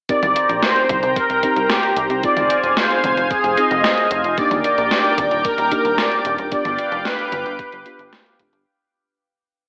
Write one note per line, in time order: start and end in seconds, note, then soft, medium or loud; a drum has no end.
0.09 1.40 C4 medium
0.09 1.40 D#4 medium
0.09 1.40 G4 medium
0.09 1.40 A#4 medium
0.09 4.34 C5 medium
0.09 0.59 D5 loud
0.09 2.22 G5 medium
0.09 2.22 A#5 medium
0.09 kick loud
0.09 closed hi-hat medium
0.23 0.35 C2 medium
0.23 closed hi-hat soft
0.23 mid tom medium
0.36 closed hi-hat medium
0.49 0.62 A#1 medium
0.49 closed hi-hat soft
0.63 1.18 C5 loud
0.63 snare loud
0.63 closed hi-hat medium
0.76 closed hi-hat soft
0.89 1.02 C2 medium
0.89 kick loud
0.89 closed hi-hat medium
0.89 mid tom medium
1.03 1.15 C2 medium
1.03 closed hi-hat soft
1.16 1.72 A#4 loud
1.16 kick loud
1.16 closed hi-hat medium
1.30 1.42 C2 medium
1.30 closed hi-hat soft
1.43 2.20 C4 medium
1.43 2.20 D#4 medium
1.43 2.20 G4 medium
1.43 2.20 A#4 medium
1.43 kick medium
1.43 closed hi-hat loud
1.56 1.69 C2 medium
1.56 closed hi-hat soft
1.70 2.07 G4 medium
1.70 snare loud
1.70 closed hi-hat medium
1.83 closed hi-hat soft
1.97 2.09 C2 medium
1.97 closed hi-hat medium
2.10 2.22 C2 medium
2.10 closed hi-hat soft
2.23 3.54 C4 medium
2.23 3.54 D#4 medium
2.23 3.54 F4 medium
2.23 3.54 G#4 medium
2.23 2.74 D5 loud
2.23 4.36 F5 medium
2.23 4.36 G#5 medium
2.23 kick loud
2.23 closed hi-hat medium
2.37 2.49 F1 medium
2.37 closed hi-hat soft
2.37 mid tom medium
2.50 closed hi-hat medium
2.63 2.76 D#1 medium
2.63 closed hi-hat soft
2.77 3.32 C5 loud
2.77 snare loud
2.77 closed hi-hat medium
2.90 closed hi-hat soft
3.04 3.16 F1 medium
3.04 closed hi-hat medium
3.04 mid tom medium
3.17 3.30 F1 medium
3.17 closed hi-hat soft
3.31 3.58 G#4 loud
3.31 kick loud
3.31 closed hi-hat medium
3.44 3.56 F1 medium
3.44 closed hi-hat soft
3.57 4.35 C4 medium
3.57 4.35 D#4 medium
3.57 4.35 F4 medium
3.57 4.35 G#4 medium
3.57 4.40 D#5 loud
3.57 closed hi-hat medium
3.71 3.83 F1 medium
3.71 closed hi-hat soft
3.84 snare loud
3.84 closed hi-hat medium
3.98 closed hi-hat soft
4.11 4.23 F1 medium
4.11 closed hi-hat medium
4.24 4.37 F1 medium
4.24 closed hi-hat soft
4.38 5.69 A#3 medium
4.38 5.69 D4 medium
4.38 5.68 D#4 medium
4.38 5.69 G4 medium
4.38 6.50 A#4 medium
4.38 4.50 D5 loud
4.38 6.50 G5 medium
4.38 6.50 D6 medium
4.38 kick loud
4.38 closed hi-hat medium
4.51 4.63 D#1 medium
4.51 closed hi-hat soft
4.51 mid tom medium
4.64 5.41 D5 loud
4.64 closed hi-hat medium
4.78 4.90 A#1 medium
4.78 closed hi-hat soft
4.91 snare loud
4.91 closed hi-hat medium
5.04 closed hi-hat soft
5.18 5.30 D#1 medium
5.18 kick loud
5.18 closed hi-hat medium
5.18 mid tom medium
5.31 5.44 D#1 medium
5.31 closed hi-hat soft
5.45 6.00 A#4 loud
5.45 kick loud
5.45 closed hi-hat medium
5.58 5.71 D#1 medium
5.58 closed hi-hat soft
5.72 6.49 A#3 medium
5.72 6.49 D4 medium
5.72 6.49 D#4 medium
5.72 6.49 G4 medium
5.72 kick medium
5.72 closed hi-hat medium
5.85 5.97 D#1 medium
5.85 closed hi-hat soft
5.98 6.36 D5 loud
5.98 snare loud
5.98 closed hi-hat medium
6.12 closed hi-hat soft
6.25 6.37 D#1 medium
6.25 closed hi-hat medium
6.38 6.51 D#1 medium
6.38 closed hi-hat soft
6.52 7.83 B3 medium
6.52 7.83 D4 medium
6.52 7.83 F4 medium
6.52 7.83 G4 medium
6.52 8.64 B4 medium
6.52 7.07 D5 loud
6.52 8.64 F5 medium
6.52 8.64 G5 medium
6.52 8.64 D6 medium
6.52 kick loud
6.52 closed hi-hat medium
6.65 6.78 G1 medium
6.65 closed hi-hat soft
6.65 mid tom medium
6.79 closed hi-hat medium
6.92 7.04 F1 medium
6.92 closed hi-hat soft
7.05 7.58 B4 loud
7.05 snare loud
7.05 closed hi-hat medium
7.19 closed hi-hat soft
7.32 7.45 G1 medium
7.32 closed hi-hat medium
7.32 mid tom medium
7.46 7.58 G1 medium
7.46 closed hi-hat soft
7.59 8.36 B4 medium
7.59 kick loud
7.59 closed hi-hat medium
7.72 7.85 G1 medium
7.72 closed hi-hat soft
7.86 8.63 B3 medium
7.86 8.63 D4 medium
7.86 8.63 F4 medium
7.86 8.63 G4 medium
7.86 closed hi-hat medium
7.99 8.12 G1 medium
7.99 closed hi-hat soft
8.13 snare loud
8.13 closed hi-hat medium
8.26 closed hi-hat soft
8.39 8.52 F1 medium
8.39 kick medium
8.39 closed hi-hat medium
8.53 8.65 G1 medium
8.53 closed hi-hat soft